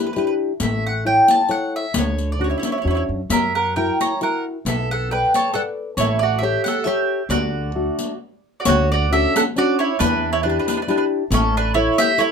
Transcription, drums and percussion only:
0.16 riq
0.60 riq
1.28 riq
1.48 riq
1.94 riq
2.18 riq
2.63 riq
3.30 riq
4.01 riq
4.21 riq
4.66 riq
5.34 riq
5.53 riq
5.98 riq
6.66 riq
6.86 riq
7.30 riq
7.99 riq
8.65 riq
9.36 riq
9.56 riq
10.00 riq
10.68 riq
10.88 riq
11.32 riq
11.98 riq
12.18 riq

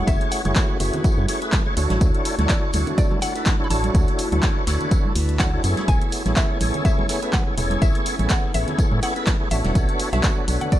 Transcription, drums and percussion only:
0.07 kick, closed hi-hat, tambourine
0.21 closed hi-hat
0.31 open hi-hat, tambourine
0.45 closed hi-hat, high conga
0.56 kick, snare, clap, closed hi-hat, tambourine
0.80 open hi-hat, tambourine
0.94 closed hi-hat, low conga
1.04 kick, closed hi-hat, tambourine
1.18 high conga
1.28 snare, open hi-hat
1.42 closed hi-hat
1.52 kick, snare, clap, closed hi-hat, tambourine, high conga
1.77 open hi-hat, tambourine
1.90 snare, closed hi-hat, high conga
2.01 kick, closed hi-hat, tambourine
2.15 closed hi-hat
2.25 open hi-hat, tambourine
2.39 snare, closed hi-hat, high conga
2.49 kick, snare, clap, closed hi-hat, tambourine
2.73 open hi-hat, tambourine, high conga
2.86 closed hi-hat, low conga
2.98 kick, closed hi-hat, tambourine
3.11 high conga, low conga
3.22 snare, open hi-hat, tambourine
3.36 closed hi-hat
3.46 kick, snare, clap, closed hi-hat, tambourine, high conga
3.71 open hi-hat, tambourine
3.84 closed hi-hat, high conga
3.95 kick, closed hi-hat, tambourine
4.08 closed hi-hat
4.18 open hi-hat, tambourine
4.32 closed hi-hat, high conga
4.43 kick, snare, clap, closed hi-hat, tambourine
4.67 snare, open hi-hat, tambourine
4.81 closed hi-hat, low conga
4.91 kick, closed hi-hat, tambourine
5.05 high conga
5.15 snare, open hi-hat
5.29 closed hi-hat
5.39 kick, snare, clap, closed hi-hat, tambourine, high conga
5.64 open hi-hat, tambourine
5.77 snare, closed hi-hat, high conga
5.88 kick, closed hi-hat, tambourine
6.02 closed hi-hat
6.12 open hi-hat, tambourine
6.26 snare, closed hi-hat, high conga
6.36 kick, snare, clap, closed hi-hat, tambourine
6.61 open hi-hat, tambourine, high conga
6.74 closed hi-hat, low conga
6.85 kick, closed hi-hat, tambourine
6.99 high conga, low conga
7.09 snare, open hi-hat, tambourine
7.22 closed hi-hat
7.33 kick, snare, clap, closed hi-hat, tambourine, high conga
7.58 open hi-hat, tambourine
7.70 closed hi-hat, high conga
7.82 kick, closed hi-hat, tambourine
7.95 closed hi-hat
8.06 open hi-hat, tambourine
8.19 closed hi-hat, high conga
8.29 kick, snare, clap, closed hi-hat, tambourine
8.54 open hi-hat, tambourine
8.68 closed hi-hat, low conga
8.79 kick, closed hi-hat, tambourine
8.91 high conga
9.03 snare, open hi-hat
9.16 closed hi-hat
9.27 kick, snare, clap, closed hi-hat, tambourine, high conga
9.51 open hi-hat, tambourine
9.65 snare, closed hi-hat, high conga
9.75 kick, closed hi-hat, tambourine
9.89 closed hi-hat
9.99 open hi-hat, tambourine
10.13 snare, closed hi-hat, high conga
10.23 kick, snare, clap, closed hi-hat, tambourine
10.48 open hi-hat, tambourine
10.61 closed hi-hat, low conga
10.72 kick, closed hi-hat, tambourine

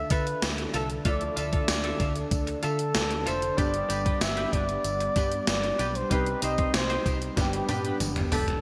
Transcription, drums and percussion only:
0.10 kick, closed hi-hat, tambourine
0.27 closed hi-hat
0.42 snare, closed hi-hat, tambourine
0.58 closed hi-hat
0.74 closed hi-hat, tambourine
0.90 closed hi-hat
1.05 kick, closed hi-hat, tambourine
1.21 closed hi-hat
1.37 closed hi-hat, tambourine
1.53 kick, closed hi-hat
1.68 snare, closed hi-hat, tambourine
1.84 closed hi-hat
2.00 kick, closed hi-hat, tambourine
2.16 closed hi-hat
2.31 kick, closed hi-hat, tambourine
2.47 closed hi-hat
2.63 closed hi-hat, tambourine
2.79 closed hi-hat
2.94 snare, closed hi-hat, tambourine
3.11 closed hi-hat
3.27 closed hi-hat, tambourine
3.42 closed hi-hat
3.58 kick, closed hi-hat, tambourine
3.74 closed hi-hat
3.90 closed hi-hat, tambourine
4.06 kick, closed hi-hat
4.21 snare, closed hi-hat, tambourine
4.37 closed hi-hat
4.53 kick, closed hi-hat
4.69 closed hi-hat
4.84 closed hi-hat, tambourine
5.00 closed hi-hat
5.16 kick, closed hi-hat, tambourine
5.32 closed hi-hat
5.47 snare, closed hi-hat, tambourine
5.63 closed hi-hat
5.79 closed hi-hat, tambourine
5.95 closed hi-hat
6.11 kick, closed hi-hat, tambourine
6.26 closed hi-hat
6.42 closed hi-hat, tambourine
6.58 kick, closed hi-hat
6.74 snare, closed hi-hat, tambourine
6.90 closed hi-hat
7.06 kick, closed hi-hat, tambourine
7.22 closed hi-hat
7.37 kick, snare, closed hi-hat, tambourine
7.53 closed hi-hat
7.69 closed hi-hat, high tom, tambourine
7.85 closed hi-hat
8.00 closed hi-hat, mid tom, tambourine
8.16 closed hi-hat, mid tom
8.32 floor tom, open hi-hat, tambourine
8.48 closed hi-hat, floor tom

